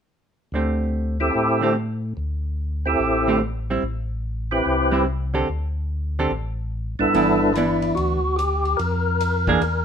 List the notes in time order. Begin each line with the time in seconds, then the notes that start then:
0.52 D2 D3 A3 C4 G4
1.20 C4 E4 G4 A4
1.35 A2
1.61 D3 A3 C4 G4
2.17 D2
2.86 C4 E4 G4 A4
2.99 A1
3.27 D3 A3 C4 G4
3.70 G3 C4 E4
3.82 A1
4.51 C4 E4 G4 B4
4.66 C2
4.91 G3 C4 E4
5.34 D3 C4 G4 A4
5.49 D2
6.19 D3 C4 G4 A4
6.31 A1
6.99 A1 G2 B3 D4 E4 A4
7.14 G1 E3 B3 D4, ride
7.54 E3 B3 D4 E4, hi-hat pedal, ride
7.82 ride
7.95 D2 F#4, ride
8.36 G4, hi-hat pedal, ride
8.65 ride
8.77 F2 A#4, ride
9.21 hi-hat pedal, ride
9.47 E3 A#3 D4 G#4, kick
9.61 E2, ride